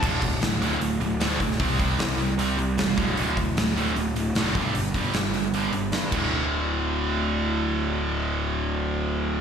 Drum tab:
CC |x---------------|----------------|----------------|--------------x-|
HH |--o-o-o-o-o-o-o-|o-o-o-o-o-o-o-o-|o-o-o-o-o-o-o-o-|o-o-o-o-o-o-o---|
SD |----o-------o--o|----o-------oo--|----o-------oo--|----o-------o---|
BD |o-o-----------o-|o-o-----------o-|--o-----------o-|--o-----------o-|

CC |----------------|----------------|
HH |----------------|----------------|
SD |----------------|----------------|
BD |----------------|----------------|